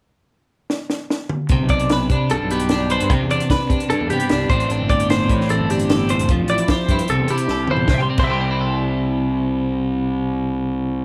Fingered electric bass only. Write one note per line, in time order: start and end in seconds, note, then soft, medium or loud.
1.49 1.59 C2 medium
1.61 2.07 B1 medium
2.10 2.29 C3 medium
2.31 2.40 C2 medium
2.42 2.97 B1 medium
3.01 3.10 G2 medium
3.10 3.19 C3 medium
3.22 3.40 E2 medium
3.70 3.79 C3 medium
3.91 4.00 G2 medium
4.01 4.10 E2 medium
4.11 4.20 C3 medium
4.31 4.49 C2 medium
4.49 4.68 A1 medium
4.70 4.79 A1 medium
4.81 5.26 G1 medium
5.29 5.48 A2 medium
5.50 5.59 A1 medium
5.60 6.16 G1 medium
6.20 6.29 F#1 medium
6.29 6.38 F1 medium
6.39 6.57 A1 medium
6.89 6.98 G2 medium
7.09 7.18 C2 medium
7.19 7.28 E2 medium
7.30 7.39 C3 medium
7.49 7.67 C2 medium
7.69 7.87 E2 medium
7.87 7.99 C2 medium
8.18 11.05 C2 medium